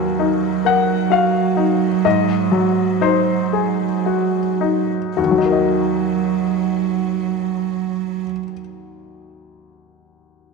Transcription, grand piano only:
0, 0, Header, 1, 2, 480
1, 0, Start_track
1, 0, Key_signature, -6, "minor"
1, 0, Tempo, 923077
1, 1067, Time_signature, 3, 2, 24, 8
1, 1067, Tempo, 972447
1, 1547, Tempo, 1041667
1, 2027, Tempo, 1125704
1, 4786, End_track
2, 0, Start_track
2, 0, Title_t, "Grand piano"
2, 0, Program_c, 0, 0
2, 0, Control_c, 0, 64, 127
2, 0, Note_on_c, 0, 39, 42
2, 0, Note_on_c, 0, 54, 33
2, 0, Note_on_c, 0, 70, 50
2, 101, Note_on_c, 0, 63, 32
2, 248, Note_off_c, 0, 54, 0
2, 323, Note_off_c, 0, 70, 0
2, 338, Note_on_c, 0, 70, 30
2, 345, Note_on_c, 0, 78, 55
2, 483, Note_off_c, 0, 63, 0
2, 565, Note_off_c, 0, 78, 0
2, 573, Note_on_c, 0, 66, 32
2, 580, Note_on_c, 0, 77, 56
2, 723, Note_off_c, 0, 70, 0
2, 815, Note_on_c, 0, 63, 33
2, 965, Note_off_c, 0, 66, 0
2, 1044, Note_off_c, 0, 39, 0
2, 1046, Note_off_c, 0, 77, 0
2, 1063, Note_off_c, 0, 63, 0
2, 1065, Note_on_c, 0, 44, 45
2, 1065, Note_on_c, 0, 75, 53
2, 1076, Control_c, 0, 64, 0
2, 1172, Control_c, 0, 64, 127
2, 1296, Note_on_c, 0, 54, 39
2, 1527, Note_off_c, 0, 75, 0
2, 1541, Note_on_c, 0, 63, 39
2, 1545, Note_on_c, 0, 72, 51
2, 1684, Note_off_c, 0, 54, 0
2, 1780, Note_on_c, 0, 68, 38
2, 1926, Note_off_c, 0, 63, 0
2, 2025, Note_on_c, 0, 66, 30
2, 2166, Note_off_c, 0, 68, 0
2, 2258, Note_on_c, 0, 63, 29
2, 2407, Note_off_c, 0, 66, 0
2, 2484, Note_off_c, 0, 72, 0
2, 2485, Note_off_c, 0, 44, 0
2, 2497, Note_on_c, 0, 66, 34
2, 2498, Note_on_c, 0, 39, 30
2, 2500, Note_off_c, 0, 63, 0
2, 2511, Control_c, 0, 64, 0
2, 2528, Note_on_c, 0, 51, 28
2, 2557, Note_on_c, 0, 54, 28
2, 2586, Note_on_c, 0, 63, 29
2, 2592, Control_c, 0, 64, 127
2, 2619, Note_on_c, 0, 70, 29
2, 2648, Note_on_c, 0, 75, 30
2, 3804, Note_off_c, 0, 39, 0
2, 3804, Note_off_c, 0, 66, 0
2, 3835, Note_off_c, 0, 51, 0
2, 3864, Note_off_c, 0, 54, 0
2, 3893, Note_off_c, 0, 63, 0
2, 3926, Note_off_c, 0, 70, 0
2, 3955, Note_off_c, 0, 75, 0
2, 4786, End_track
0, 0, End_of_file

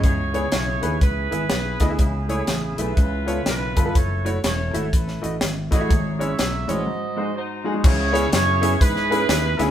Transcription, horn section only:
0, 0, Header, 1, 2, 480
1, 0, Start_track
1, 0, Key_signature, 4, "minor"
1, 0, Tempo, 489396
1, 30, Time_signature, 4, 2, 24, 8
1, 5791, Tempo, 483871
1, 9564, End_track
2, 0, Start_track
2, 0, Title_t, "Horn section"
2, 0, Program_c, 0, 61
2, 31, Note_on_c, 0, 73, 94
2, 37, Note_on_c, 0, 68, 69
2, 39, Note_on_c, 0, 64, 68
2, 478, Note_off_c, 0, 73, 0
2, 502, Note_off_c, 0, 64, 0
2, 507, Note_off_c, 0, 68, 0
2, 513, Note_on_c, 0, 73, 91
2, 514, Note_on_c, 0, 64, 70
2, 519, Note_on_c, 0, 68, 64
2, 958, Note_off_c, 0, 73, 0
2, 988, Note_off_c, 0, 64, 0
2, 995, Note_off_c, 0, 68, 0
2, 997, Note_on_c, 0, 71, 97
2, 1000, Note_on_c, 0, 64, 71
2, 1006, Note_on_c, 0, 68, 68
2, 1762, Note_off_c, 0, 68, 0
2, 1764, Note_off_c, 0, 64, 0
2, 1772, Note_off_c, 0, 71, 0
2, 1774, Note_on_c, 0, 68, 86
2, 1776, Note_on_c, 0, 64, 56
2, 2239, Note_off_c, 0, 68, 0
2, 2240, Note_off_c, 0, 64, 0
2, 2251, Note_on_c, 0, 64, 58
2, 2251, Note_on_c, 0, 68, 78
2, 2697, Note_off_c, 0, 68, 0
2, 2734, Note_off_c, 0, 64, 0
2, 2739, Note_on_c, 0, 71, 89
2, 2743, Note_on_c, 0, 65, 68
2, 2746, Note_on_c, 0, 64, 70
2, 3389, Note_off_c, 0, 64, 0
2, 3390, Note_off_c, 0, 71, 0
2, 3393, Note_off_c, 0, 65, 0
2, 3400, Note_on_c, 0, 64, 59
2, 3402, Note_on_c, 0, 71, 87
2, 3404, Note_on_c, 0, 65, 59
2, 3844, Note_off_c, 0, 64, 0
2, 3845, Note_off_c, 0, 71, 0
2, 3846, Note_off_c, 0, 65, 0
2, 3878, Note_on_c, 0, 64, 62
2, 3879, Note_on_c, 0, 69, 64
2, 3879, Note_on_c, 0, 73, 85
2, 4218, Note_off_c, 0, 73, 0
2, 4219, Note_off_c, 0, 64, 0
2, 4219, Note_off_c, 0, 69, 0
2, 4360, Note_on_c, 0, 64, 64
2, 4361, Note_on_c, 0, 69, 67
2, 4364, Note_on_c, 0, 73, 94
2, 4805, Note_off_c, 0, 73, 0
2, 4832, Note_off_c, 0, 64, 0
2, 4844, Note_on_c, 0, 64, 60
2, 4846, Note_on_c, 0, 71, 78
2, 5277, Note_off_c, 0, 69, 0
2, 5298, Note_off_c, 0, 71, 0
2, 5607, Note_off_c, 0, 64, 0
2, 5617, Note_on_c, 0, 68, 66
2, 5618, Note_on_c, 0, 73, 88
2, 5619, Note_on_c, 0, 64, 66
2, 6061, Note_off_c, 0, 73, 0
2, 6086, Note_off_c, 0, 68, 0
2, 6094, Note_on_c, 0, 73, 73
2, 6097, Note_on_c, 0, 76, 100
2, 6098, Note_on_c, 0, 68, 68
2, 6538, Note_off_c, 0, 64, 0
2, 6576, Note_off_c, 0, 76, 0
2, 6578, Note_on_c, 0, 72, 69
2, 6579, Note_on_c, 0, 75, 102
2, 6582, Note_on_c, 0, 66, 75
2, 6719, Note_off_c, 0, 73, 0
2, 6720, Note_off_c, 0, 68, 0
2, 7222, Note_off_c, 0, 72, 0
2, 7228, Note_off_c, 0, 66, 0
2, 7234, Note_on_c, 0, 72, 84
2, 7240, Note_on_c, 0, 63, 43
2, 7240, Note_on_c, 0, 66, 51
2, 7241, Note_off_c, 0, 75, 0
2, 7242, Note_off_c, 0, 72, 0
2, 7242, Note_on_c, 0, 72, 82
2, 7243, Note_off_c, 0, 63, 0
2, 7243, Note_on_c, 0, 63, 62
2, 7686, Note_off_c, 0, 66, 0
2, 7687, Note_off_c, 0, 63, 0
2, 7720, Note_off_c, 0, 72, 0
2, 7720, Note_on_c, 0, 73, 118
2, 7725, Note_on_c, 0, 68, 89
2, 7728, Note_on_c, 0, 64, 84
2, 8175, Note_off_c, 0, 73, 0
2, 8187, Note_off_c, 0, 64, 0
2, 8187, Note_on_c, 0, 73, 115
2, 8188, Note_off_c, 0, 68, 0
2, 8199, Note_on_c, 0, 64, 87
2, 8199, Note_on_c, 0, 68, 81
2, 8637, Note_off_c, 0, 73, 0
2, 8664, Note_off_c, 0, 68, 0
2, 8665, Note_off_c, 0, 64, 0
2, 8667, Note_on_c, 0, 71, 117
2, 8676, Note_on_c, 0, 68, 83
2, 8677, Note_on_c, 0, 64, 86
2, 9428, Note_off_c, 0, 68, 0
2, 9440, Note_on_c, 0, 68, 94
2, 9445, Note_off_c, 0, 71, 0
2, 9564, Note_off_c, 0, 64, 0
2, 9564, Note_off_c, 0, 68, 0
2, 9564, End_track
0, 0, End_of_file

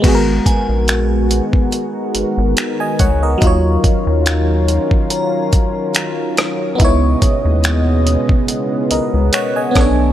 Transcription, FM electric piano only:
0, 0, Header, 1, 2, 480
1, 0, Start_track
1, 0, Key_signature, 5, "minor"
1, 0, Tempo, 845070
1, 22, Time_signature, 4, 2, 24, 8
1, 5752, End_track
2, 0, Start_track
2, 0, Title_t, "FM electric piano"
2, 0, Program_c, 0, 5
2, 0, Control_c, 0, 64, 127
2, 0, Note_on_c, 0, 56, 75
2, 11, Note_on_c, 0, 59, 71
2, 29, Note_on_c, 0, 66, 69
2, 30, Control_c, 0, 64, 0
2, 46, Note_on_c, 0, 68, 71
2, 74, Note_off_c, 0, 68, 0
2, 83, Note_on_c, 0, 70, 87
2, 118, Control_c, 0, 64, 127
2, 1470, Note_off_c, 0, 70, 0
2, 1591, Note_on_c, 0, 80, 64
2, 1595, Note_on_c, 0, 75, 53
2, 1696, Note_off_c, 0, 80, 0
2, 1698, Note_off_c, 0, 75, 0
2, 1702, Note_on_c, 0, 78, 66
2, 1706, Note_on_c, 0, 73, 55
2, 1825, Note_off_c, 0, 78, 0
2, 1827, Note_off_c, 0, 73, 0
2, 1833, Note_on_c, 0, 75, 63
2, 1836, Note_on_c, 0, 70, 55
2, 1905, Note_off_c, 0, 56, 0
2, 1914, Note_off_c, 0, 59, 0
2, 1919, Note_on_c, 0, 54, 77
2, 1923, Note_off_c, 0, 66, 0
2, 1936, Note_on_c, 0, 63, 71
2, 1950, Control_c, 0, 64, 0
2, 1953, Note_on_c, 0, 65, 75
2, 1970, Note_on_c, 0, 73, 88
2, 2052, Control_c, 0, 64, 127
2, 2060, Note_off_c, 0, 75, 0
2, 2062, Note_off_c, 0, 70, 0
2, 3827, Note_off_c, 0, 54, 0
2, 3836, Note_off_c, 0, 63, 0
2, 3836, Note_on_c, 0, 59, 79
2, 3845, Note_off_c, 0, 65, 0
2, 3853, Note_off_c, 0, 73, 0
2, 3853, Note_on_c, 0, 63, 74
2, 3868, Control_c, 0, 64, 0
2, 3870, Note_on_c, 0, 64, 75
2, 3888, Note_on_c, 0, 73, 92
2, 3981, Control_c, 0, 64, 127
2, 5052, Note_off_c, 0, 73, 0
2, 5061, Note_on_c, 0, 75, 61
2, 5065, Note_on_c, 0, 70, 55
2, 5290, Note_off_c, 0, 75, 0
2, 5291, Note_off_c, 0, 70, 0
2, 5301, Note_on_c, 0, 78, 74
2, 5304, Note_on_c, 0, 73, 60
2, 5425, Note_off_c, 0, 78, 0
2, 5426, Note_off_c, 0, 73, 0
2, 5431, Note_on_c, 0, 80, 63
2, 5434, Note_on_c, 0, 75, 55
2, 5506, Note_off_c, 0, 59, 0
2, 5515, Note_off_c, 0, 63, 0
2, 5516, Note_on_c, 0, 59, 77
2, 5523, Note_off_c, 0, 64, 0
2, 5534, Note_on_c, 0, 61, 58
2, 5548, Control_c, 0, 64, 0
2, 5551, Note_on_c, 0, 69, 69
2, 5569, Note_on_c, 0, 73, 83
2, 5571, Note_on_c, 0, 62, 69
2, 5578, Note_off_c, 0, 61, 0
2, 5652, Control_c, 0, 64, 127
2, 5659, Note_off_c, 0, 80, 0
2, 5661, Note_off_c, 0, 75, 0
2, 5752, Note_off_c, 0, 59, 0
2, 5752, Note_off_c, 0, 62, 0
2, 5752, Note_off_c, 0, 69, 0
2, 5752, Note_off_c, 0, 73, 0
2, 5752, End_track
0, 0, End_of_file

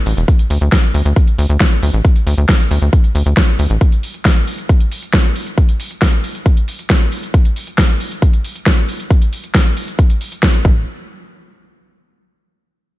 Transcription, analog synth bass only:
0, 0, Header, 1, 2, 480
1, 0, Start_track
1, 0, Tempo, 441176
1, 307, Time_signature, 4, 2, 24, 8
1, 14132, End_track
2, 0, Start_track
2, 0, Title_t, "Analog synth bass"
2, 0, Program_c, 0, 38
2, 67, Note_on_c, 0, 33, 91
2, 155, Note_off_c, 0, 33, 0
2, 187, Note_on_c, 0, 28, 83
2, 275, Note_off_c, 0, 28, 0
2, 547, Note_on_c, 0, 38, 95
2, 635, Note_off_c, 0, 38, 0
2, 668, Note_on_c, 0, 38, 79
2, 755, Note_off_c, 0, 38, 0
2, 1027, Note_on_c, 0, 38, 94
2, 1115, Note_off_c, 0, 38, 0
2, 1147, Note_on_c, 0, 38, 79
2, 1235, Note_off_c, 0, 38, 0
2, 1507, Note_on_c, 0, 38, 96
2, 1595, Note_off_c, 0, 38, 0
2, 1627, Note_on_c, 0, 38, 84
2, 1715, Note_off_c, 0, 38, 0
2, 1987, Note_on_c, 0, 38, 91
2, 2075, Note_off_c, 0, 38, 0
2, 2106, Note_on_c, 0, 33, 77
2, 2194, Note_off_c, 0, 33, 0
2, 2466, Note_on_c, 0, 38, 98
2, 2554, Note_off_c, 0, 38, 0
2, 2586, Note_on_c, 0, 38, 80
2, 2674, Note_off_c, 0, 38, 0
2, 2947, Note_on_c, 0, 38, 98
2, 3035, Note_off_c, 0, 38, 0
2, 3067, Note_on_c, 0, 38, 81
2, 3155, Note_off_c, 0, 38, 0
2, 3427, Note_on_c, 0, 38, 96
2, 3515, Note_off_c, 0, 38, 0
2, 3547, Note_on_c, 0, 38, 78
2, 3635, Note_off_c, 0, 38, 0
2, 3907, Note_on_c, 0, 38, 92
2, 3995, Note_off_c, 0, 38, 0
2, 4027, Note_on_c, 0, 33, 81
2, 4115, Note_off_c, 0, 33, 0
2, 11586, Note_on_c, 0, 33, 92
2, 11810, Note_off_c, 0, 33, 0
2, 14132, End_track
0, 0, End_of_file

